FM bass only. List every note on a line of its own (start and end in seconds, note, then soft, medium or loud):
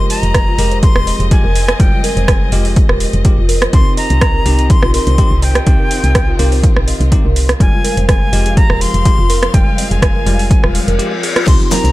0.23 0.52 F1 medium
0.58 0.89 F1 medium
0.96 1.11 D#1 medium
1.20 1.35 F1 medium
1.44 1.73 F1 medium
1.80 1.88 F1 loud
2.17 2.46 F1 medium
2.52 2.82 F1 medium
2.89 3.05 D#1 medium
3.14 3.29 F1 medium
3.38 3.67 F1 medium
3.73 3.82 C2 loud
4.10 4.40 C2 medium
4.46 4.76 C2 medium
4.83 4.98 A#1 medium
5.07 5.23 C2 medium
5.31 5.60 C2 medium
5.67 5.75 C2 loud
6.04 6.33 C2 medium
6.39 6.70 C2 medium
6.76 6.92 A#1 medium
7.00 7.16 C2 medium
7.25 7.54 C2 medium
7.60 7.69 F1 loud
7.97 8.27 F1 medium
8.33 8.63 F1 medium
8.70 8.86 D#1 medium
8.94 9.10 F1 medium
9.18 9.48 F1 medium
9.54 9.62 F1 loud
9.91 10.20 F1 medium
10.26 10.57 F1 medium
10.64 10.79 D#1 medium
10.88 10.99 F1 medium
11.47 11.56 C2 loud
11.84 11.92 C2 medium